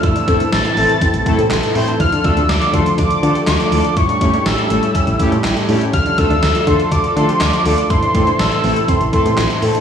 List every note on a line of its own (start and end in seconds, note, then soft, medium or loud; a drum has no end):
0.00 0.12 A1 loud
0.00 1.98 C3 medium
0.00 1.98 E3 medium
0.00 1.96 A3 medium
0.00 0.14 E4 loud
0.00 1.98 E4 medium
0.00 3.93 A4 loud
0.00 0.54 E6 loud
0.00 kick loud
0.00 closed hi-hat medium
0.16 0.26 D4 medium
0.16 closed hi-hat medium
0.28 0.37 A1 loud
0.28 0.43 A3 medium
0.28 0.43 C4 medium
0.28 0.38 C4 medium
0.28 0.43 E4 medium
0.28 0.43 A4 medium
0.28 kick loud
0.28 closed hi-hat medium
0.40 0.50 D4 medium
0.40 closed hi-hat medium
0.52 0.61 A1 loud
0.52 0.63 D4 medium
0.52 1.75 A6 loud
0.52 snare loud
0.52 closed hi-hat medium
0.65 0.85 E4 medium
0.65 closed hi-hat medium
0.77 0.86 A1 loud
0.77 0.92 A3 medium
0.77 0.92 C4 medium
0.77 0.92 E4 medium
0.77 0.92 A4 medium
0.77 open hi-hat medium
0.90 closed hi-hat medium
1.01 1.22 C4 medium
1.01 kick loud
1.01 closed hi-hat medium
1.14 1.23 A1 medium
1.14 closed hi-hat medium
1.26 1.41 A3 medium
1.26 1.41 C4 medium
1.26 1.41 E4 medium
1.26 1.36 E4 medium
1.26 1.41 A4 loud
1.26 kick medium
1.26 closed hi-hat medium
1.38 1.47 A2 loud
1.38 1.49 G4 medium
1.38 closed hi-hat medium
1.51 1.60 A1 loud
1.51 1.71 F4 medium
1.51 snare loud
1.51 clap loud
1.51 closed hi-hat medium
1.63 closed hi-hat medium
1.75 1.84 A2 medium
1.75 1.90 A3 loud
1.75 1.90 C4 medium
1.75 1.90 E4 medium
1.75 1.86 E4 medium
1.75 1.90 C5 loud
1.75 open hi-hat medium
1.88 1.98 D4 medium
1.88 closed hi-hat medium
2.00 2.09 D2 loud
2.00 3.95 D3 medium
2.00 3.95 F3 medium
2.00 9.80 A3 medium
2.00 2.10 E4 loud
2.00 3.95 F4 medium
2.00 2.26 F6 loud
2.00 kick loud
2.00 closed hi-hat medium
2.12 2.22 D4 medium
2.12 closed hi-hat medium
2.24 2.33 D2 loud
2.24 2.39 A3 medium
2.24 2.35 C4 medium
2.24 2.39 D4 medium
2.24 2.39 F4 medium
2.24 2.39 A4 medium
2.24 2.51 E6 loud
2.24 kick loud
2.24 closed hi-hat medium
2.37 2.46 D2 loud
2.37 2.47 D4 medium
2.37 closed hi-hat medium
2.49 2.58 D2 loud
2.49 2.59 D4 medium
2.49 2.76 D6 loud
2.49 snare loud
2.49 closed hi-hat medium
2.61 2.82 F4 medium
2.61 closed hi-hat medium
2.74 2.83 D3 loud
2.74 2.88 A3 medium
2.74 2.89 D4 medium
2.74 2.88 F4 medium
2.74 2.88 A4 medium
2.74 2.98 C6 medium
2.74 kick loud
2.74 closed hi-hat medium
2.86 closed hi-hat medium
2.98 3.07 D2 loud
2.98 3.19 D4 medium
2.98 3.44 D6 loud
2.98 kick loud
2.98 closed hi-hat medium
3.11 closed hi-hat medium
3.23 3.32 D3 loud
3.23 3.38 A3 medium
3.23 3.38 D4 medium
3.23 3.38 F4 medium
3.23 3.33 F4 medium
3.23 3.38 A4 medium
3.23 closed hi-hat medium
3.35 3.45 G4 medium
3.35 closed hi-hat medium
3.47 3.56 D2 loud
3.47 3.68 F4 medium
3.47 3.98 D6 loud
3.47 snare loud
3.47 clap loud
3.47 closed hi-hat medium
3.60 closed hi-hat medium
3.72 3.81 D2 loud
3.72 3.87 A3 medium
3.72 3.87 D4 medium
3.72 3.82 E4 medium
3.72 3.87 F4 medium
3.72 3.87 A4 medium
3.72 open hi-hat medium
3.84 3.95 D4 medium
3.84 closed hi-hat medium
3.97 4.06 A1 loud
3.97 5.91 C#3 medium
3.97 5.91 G3 medium
3.97 5.91 E4 medium
3.97 4.07 E4 loud
3.97 5.91 G4 loud
3.97 4.48 C#6 loud
3.97 kick loud
3.97 closed hi-hat medium
4.09 4.19 D4 medium
4.09 closed hi-hat medium
4.21 4.30 A1 loud
4.21 4.36 A3 medium
4.21 4.31 C#4 medium
4.21 4.36 C#4 medium
4.21 4.36 E4 medium
4.21 4.36 G4 medium
4.21 kick loud
4.21 closed hi-hat medium
4.34 4.44 D4 medium
4.34 closed hi-hat medium
4.46 4.55 A1 loud
4.46 4.56 C#4 medium
4.46 5.69 E6 loud
4.46 snare loud
4.46 closed hi-hat medium
4.58 4.78 E4 medium
4.58 closed hi-hat medium
4.70 4.79 A1 loud
4.70 4.85 A3 medium
4.70 4.85 C#4 medium
4.70 4.85 E4 medium
4.70 4.85 A4 medium
4.70 closed hi-hat medium
4.83 closed hi-hat medium
4.95 5.15 C#4 loud
4.95 kick loud
4.95 closed hi-hat medium
5.07 5.16 A1 loud
5.07 closed hi-hat medium
5.20 5.34 A3 medium
5.20 5.34 C#4 medium
5.20 5.34 E4 medium
5.20 5.30 E4 medium
5.20 5.34 G4 loud
5.20 kick medium
5.20 closed hi-hat medium
5.32 5.41 A2 loud
5.32 5.42 F4 medium
5.32 closed hi-hat medium
5.44 5.53 A1 loud
5.44 5.65 E4 medium
5.44 snare loud
5.44 clap loud
5.44 closed hi-hat medium
5.57 closed hi-hat medium
5.69 5.78 A2 loud
5.69 5.84 A3 loud
5.69 5.84 C#4 medium
5.69 5.79 D4 medium
5.69 5.84 E4 medium
5.69 5.84 G4 loud
5.69 open hi-hat medium
5.81 5.91 C#4 medium
5.81 closed hi-hat medium
5.93 6.02 D2 loud
5.93 7.88 D3 medium
5.93 7.88 F3 medium
5.93 6.04 E4 loud
5.93 7.88 F4 medium
5.93 7.88 A4 loud
5.93 6.20 F6 loud
5.93 kick loud
5.93 closed hi-hat medium
6.06 6.16 D4 medium
6.06 closed hi-hat medium
6.18 6.27 D2 loud
6.18 6.33 A3 medium
6.18 6.28 C4 medium
6.18 6.33 D4 medium
6.18 6.33 F4 medium
6.18 6.33 A4 medium
6.18 6.69 E6 loud
6.18 kick loud
6.18 closed hi-hat medium
6.30 6.39 D2 loud
6.30 6.41 D4 medium
6.30 closed hi-hat medium
6.43 6.52 D2 loud
6.43 6.53 D4 medium
6.43 snare loud
6.43 closed hi-hat medium
6.55 6.75 F4 medium
6.55 closed hi-hat medium
6.67 6.76 D3 loud
6.67 6.82 A3 medium
6.67 6.82 D4 medium
6.67 6.82 F4 medium
6.67 6.82 A4 medium
6.67 6.93 C6 loud
6.67 kick loud
6.67 closed hi-hat medium
6.80 closed hi-hat medium
6.92 7.01 D2 loud
6.92 7.12 D4 loud
6.92 7.18 D6 loud
6.92 kick loud
6.92 closed hi-hat medium
7.04 closed hi-hat medium
7.16 7.25 D3 loud
7.16 7.31 A3 medium
7.16 7.31 D4 medium
7.16 7.31 F4 medium
7.16 7.27 F4 medium
7.16 7.31 A4 medium
7.16 7.42 C6 loud
7.16 closed hi-hat medium
7.29 7.39 G4 medium
7.29 closed hi-hat medium
7.41 7.50 D2 loud
7.41 7.61 F4 medium
7.41 7.89 D6 loud
7.41 snare loud
7.41 clap loud
7.41 closed hi-hat medium
7.53 closed hi-hat medium
7.66 7.75 D2 loud
7.66 7.80 A3 medium
7.66 7.80 D4 medium
7.66 7.76 E4 medium
7.66 7.80 F4 medium
7.66 7.80 A4 medium
7.66 open hi-hat medium
7.78 7.88 D4 medium
7.78 closed hi-hat medium
7.90 7.99 A1 loud
7.90 9.80 C3 medium
7.90 9.80 E3 medium
7.90 9.80 E4 medium
7.90 8.00 E4 loud
7.90 9.80 A4 loud
7.90 8.41 C6 loud
7.90 kick loud
7.90 closed hi-hat medium
8.03 8.13 D4 medium
8.03 closed hi-hat medium
8.15 8.24 A1 loud
8.15 8.30 A3 medium
8.15 8.29 C4 medium
8.15 8.25 C4 medium
8.15 8.29 E4 medium
8.15 8.29 A4 medium
8.15 kick loud
8.15 closed hi-hat medium
8.27 8.37 D4 medium
8.27 closed hi-hat medium
8.39 8.48 A1 loud
8.39 8.50 D4 medium
8.39 8.90 E6 loud
8.39 snare loud
8.39 closed hi-hat medium
8.52 8.72 E4 medium
8.52 closed hi-hat medium
8.64 8.73 A1 loud
8.64 8.79 A3 medium
8.64 8.79 C4 medium
8.64 8.79 E4 medium
8.64 8.79 A4 medium
8.64 open hi-hat medium
8.76 closed hi-hat medium
8.88 9.09 C4 medium
8.88 9.13 C6 medium
8.88 kick loud
8.88 closed hi-hat medium
9.01 9.10 A1 medium
9.01 closed hi-hat medium
9.13 9.28 A3 medium
9.13 9.28 C4 medium
9.13 9.28 E4 medium
9.13 9.23 E4 medium
9.13 9.28 A4 medium
9.13 9.59 C6 medium
9.13 kick medium
9.13 closed hi-hat medium
9.25 9.34 A2 loud
9.25 9.36 G4 medium
9.25 closed hi-hat medium
9.38 9.47 A1 loud
9.38 9.58 F4 medium
9.38 snare loud
9.38 clap loud
9.38 closed hi-hat medium
9.50 closed hi-hat medium
9.62 9.71 A2 medium
9.62 9.77 A3 medium
9.62 9.77 C4 medium
9.62 9.77 E4 medium
9.62 9.72 E4 medium
9.62 9.77 A4 medium
9.62 open hi-hat medium
9.75 9.80 D4 medium
9.75 closed hi-hat medium